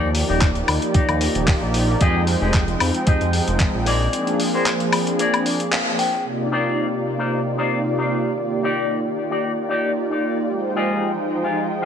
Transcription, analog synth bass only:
0.00 0.23 D#2 loud
0.30 0.63 D#1 loud
0.68 0.79 D#2 medium
1.09 1.28 D#2 medium
1.35 1.55 D#1 medium
1.62 1.96 A#1 loud
2.01 2.36 F2 loud
2.42 2.75 F1 loud
2.81 2.91 F2 medium
3.07 3.18 F2 soft
3.21 3.40 F2 medium
3.48 3.67 F1 medium
3.75 4.08 A#1 loud

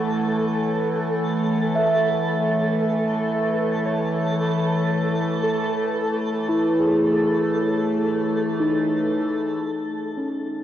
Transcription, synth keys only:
0.00 0.49 F#5 medium
1.75 3.65 E5 medium
3.86 5.75 C#5 medium
5.43 7.10 A4 medium
6.49 8.38 E4 medium
6.80 8.67 G#4 medium
7.11 8.96 A4 medium
8.60 10.13 D#4 medium
10.17 10.64 C#4 medium

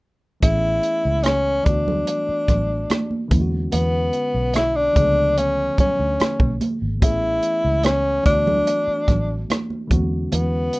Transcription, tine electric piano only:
0.40 1.62 E3 medium
0.40 1.63 A3 medium
0.40 1.65 B3 soft
0.40 1.67 C#4 medium
0.40 1.67 G#4 medium
1.63 3.26 E3 medium
1.63 3.27 A3 medium
1.63 3.28 B3 medium
1.67 3.28 D4 medium
1.67 3.29 F#4 medium
3.28 4.91 D3 medium
3.28 4.92 G#3 medium
3.28 4.93 B3 medium
3.33 4.93 C#4 medium
3.33 3.39 E4 medium
3.41 4.98 F#4 medium
4.93 6.96 F3 medium
4.93 6.97 A3 medium
4.93 6.98 B3 medium
4.98 6.99 D3 medium
4.98 7.00 G#4 medium
7.00 8.22 E3 medium
7.00 8.23 A3 medium
7.00 8.25 B3 soft
7.00 8.26 C#4 soft
7.00 8.26 G#4 medium
8.23 9.86 E3 medium
8.23 9.87 A3 medium
8.23 9.87 B3 medium
8.28 9.88 D4 medium
8.28 9.89 F#4 medium
9.87 10.79 D3 medium
9.87 10.79 G#3 medium
9.87 10.79 B3 medium
9.92 10.79 C#4 medium
9.92 10.79 F#4 medium

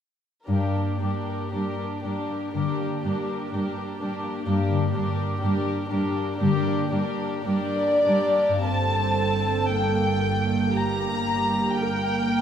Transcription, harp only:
0.48 4.38 G2 soft
0.75 2.27 A#3 soft
1.01 1.52 D5 soft
1.28 1.78 A#4 soft
1.53 3.03 D5 soft
1.79 3.27 A#4 soft
2.04 3.99 D4 soft
2.29 2.78 A#3 soft
2.54 4.68 D3 soft
2.79 4.21 A#3 soft
3.04 3.52 D5 soft
3.28 3.76 A#4 soft
3.53 4.92 D5 soft
3.77 5.15 A#4 soft
4.01 5.89 D4 soft
4.22 6.14 A#3 soft
4.46 8.36 G2 soft
4.70 6.40 D3 soft
4.93 5.40 D5 soft
5.16 5.64 A#4 soft
5.41 6.91 D5 soft
5.66 7.17 A#4 soft
5.91 8.05 D4 soft
6.15 6.65 A#3 soft
6.41 8.72 D3 soft
6.67 8.36 A#3 soft
6.92 7.44 D5 soft
7.18 7.74 A#4 soft
7.46 8.61 D5 soft
7.75 11.65 A#4 soft
8.06 11.96 D4 soft
8.37 8.52 A#3 soft
8.48 12.38 G2 soft
8.53 12.41 A#3 soft
8.53 12.41 G4 soft
8.62 12.41 D5 soft

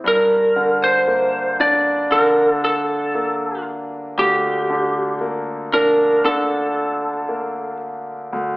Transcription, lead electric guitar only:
0.08 0.80 A#4 medium
0.84 1.60 C5 medium
1.61 2.13 D5 medium
2.12 2.51 A#4 medium
2.51 2.64 A4 medium
2.65 3.63 A4 medium
4.19 5.18 G4 medium
5.74 6.25 A#4 medium
6.25 7.77 A4 medium

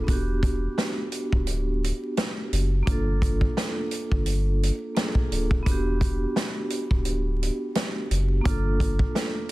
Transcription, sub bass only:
0.08 0.67 E1 loud
1.32 1.92 D1 medium
2.52 2.82 F#1 medium
2.87 3.47 G1 loud
4.12 4.71 G1 medium
5.31 5.61 D1 medium
5.66 6.26 E1 loud
6.91 7.50 D1 medium
8.11 8.40 F#1 loud
8.45 9.05 G1 loud

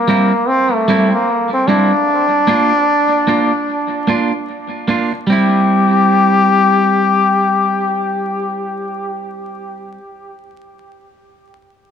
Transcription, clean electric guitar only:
0.08 0.31 G3 medium
0.08 0.32 C4 medium
0.08 0.32 E4 medium
0.88 1.11 G3 medium
0.88 1.12 C4 medium
0.88 1.12 E4 loud
1.68 1.91 G3 medium
1.68 1.92 C4 medium
1.68 1.92 E4 medium
1.93 muted clean electric guitar stroke medium
2.47 2.71 A#3 medium
2.47 2.71 D4 medium
2.47 2.72 F4 loud
3.27 3.51 A#3 medium
3.27 3.52 D4 medium
3.27 3.52 F4 medium
4.07 4.31 A#3 medium
4.07 4.32 D4 medium
4.07 4.32 F4 medium
4.88 5.11 A#3 medium
4.88 5.12 D4 medium
4.88 5.11 F4 medium
5.13 muted clean electric guitar stroke medium
5.27 9.97 G3 medium
5.27 9.99 C4 medium
5.32 10.00 E4 medium

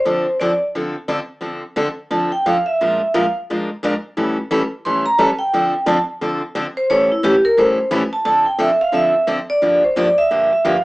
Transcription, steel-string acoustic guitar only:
0.05 0.26 D3 medium
0.05 0.26 F3 medium
0.05 0.26 C4 medium
0.05 0.26 D4 medium
0.05 0.26 A4 medium
0.41 0.51 D3 medium
0.41 0.51 F3 medium
0.41 0.51 C4 medium
0.41 0.51 D4 loud
0.41 0.51 A4 medium
0.75 0.95 D3 medium
0.75 0.95 F3 medium
0.75 0.95 C4 medium
0.75 0.95 D4 medium
0.75 0.95 A4 medium
1.08 1.19 D3 medium
1.08 1.19 F3 medium
1.08 1.19 C4 medium
1.08 1.19 D4 medium
1.08 1.19 A4 loud
1.41 1.62 D3 medium
1.41 1.62 F3 medium
1.41 1.62 C4 medium
1.41 1.62 D4 medium
1.41 1.62 A4 medium
1.76 1.87 D3 medium
1.76 1.87 F3 medium
1.76 1.87 C4 medium
1.76 1.87 D4 loud
1.76 1.87 A4 medium
2.11 2.31 D3 medium
2.11 2.31 F3 medium
2.11 2.31 C4 medium
2.11 2.31 D4 medium
2.11 2.31 A4 medium
2.46 2.56 D3 medium
2.46 2.56 F3 medium
2.46 2.56 C4 medium
2.46 2.56 D4 medium
2.46 2.57 A4 medium
2.81 3.00 A#2 medium
2.81 3.00 F3 medium
2.81 3.00 G#3 medium
2.81 3.00 D4 medium
2.81 3.00 F4 medium
2.81 3.00 A#4 medium
3.14 3.24 A#2 medium
3.14 3.24 F3 medium
3.14 3.24 G#3 loud
3.14 3.24 D4 medium
3.14 3.25 F4 medium
3.14 3.25 A#4 loud
3.50 3.69 A#2 medium
3.50 3.69 F3 medium
3.50 3.69 G#3 medium
3.50 3.69 D4 medium
3.50 3.69 F4 medium
3.50 3.69 A#4 medium
3.83 3.93 A#2 medium
3.83 3.93 F3 medium
3.83 3.93 G#3 medium
3.83 3.94 D4 medium
3.83 3.93 F4 loud
3.83 3.94 A#4 loud
4.17 4.37 A2 medium
4.17 4.36 E3 medium
4.17 4.37 G3 medium
4.17 4.37 C#4 medium
4.17 4.37 E4 medium
4.17 4.37 A4 medium
4.51 4.61 A2 medium
4.51 4.61 E3 loud
4.51 4.61 G3 medium
4.51 4.61 C#4 medium
4.51 4.61 E4 medium
4.51 4.61 A4 loud
4.85 5.05 A2 medium
4.85 5.05 E3 medium
4.85 5.05 G3 medium
4.85 5.05 C#4 medium
4.85 5.05 E4 medium
4.85 5.05 A4 medium
5.19 5.29 A2 medium
5.19 5.29 E3 medium
5.19 5.29 G3 loud
5.19 5.29 C#4 loud
5.19 5.29 E4 loud
5.19 5.29 A4 loud
5.53 5.73 D3 medium
5.53 5.73 F3 medium
5.53 5.73 C4 medium
5.53 5.73 D4 medium
5.53 5.73 A4 medium
5.86 5.97 D3 medium
5.86 5.97 F3 loud
5.86 5.97 C4 medium
5.86 5.97 D4 loud
5.86 5.97 A4 loud
6.21 6.41 D3 medium
6.21 6.41 F3 medium
6.21 6.41 C4 medium
6.21 6.41 D4 medium
6.21 6.41 A4 medium
6.55 6.66 D3 medium
6.55 6.66 F3 medium
6.55 6.66 C4 medium
6.55 6.66 D4 loud
6.55 6.66 A4 loud
6.90 7.09 A2 medium
6.90 7.10 E3 medium
6.90 7.09 G3 medium
6.90 7.10 C#4 medium
6.90 7.10 E4 medium
6.90 7.10 A4 medium
7.23 7.34 A2 loud
7.23 7.34 E3 medium
7.23 7.34 G3 loud
7.23 7.34 C#4 loud
7.23 7.34 E4 loud
7.23 7.34 A4 loud
7.57 7.77 A2 medium
7.57 7.77 E3 medium
7.57 7.77 G3 medium
7.57 7.78 C#4 medium
7.57 7.78 E4 medium
7.57 7.78 A4 medium
7.91 8.02 A2 medium
7.91 8.02 E3 loud
7.91 8.02 G3 loud
7.91 8.02 C#4 loud
7.91 8.02 E4 loud
7.91 8.02 A4 loud
8.25 8.45 D3 medium
8.25 8.45 F3 medium
8.25 8.45 C4 medium
8.25 8.46 D4 medium
8.25 8.45 A4 medium
8.59 8.70 D3 medium
8.59 8.70 F3 medium
8.59 8.70 C4 medium
8.59 8.70 D4 medium
8.59 8.70 A4 loud
8.92 9.13 D3 medium
8.92 9.13 F3 medium
8.92 9.13 C4 medium
8.92 9.13 D4 medium
8.92 9.14 A4 medium
9.27 9.38 D3 medium
9.27 9.38 F3 medium
9.27 9.38 C4 medium
9.27 9.38 D4 medium
9.27 9.38 A4 medium
9.62 9.82 G2 medium
9.62 9.82 D3 medium
9.62 9.82 F3 medium
9.62 9.82 A#3 medium
9.62 9.82 D4 medium
9.62 9.82 G4 medium
9.96 10.07 G2 medium
9.96 10.07 D3 medium
9.96 10.07 F3 medium
9.96 10.07 A#3 medium
9.96 10.07 D4 loud
9.96 10.07 G4 medium
10.31 10.51 G2 medium
10.31 10.51 D3 medium
10.31 10.51 F3 medium
10.31 10.51 A#3 medium
10.31 10.51 D4 medium
10.31 10.51 G4 medium
10.65 10.75 G2 medium
10.65 10.75 D3 medium
10.65 10.75 F3 medium
10.65 10.75 A#3 loud
10.65 10.76 D4 medium
10.65 10.75 G4 loud

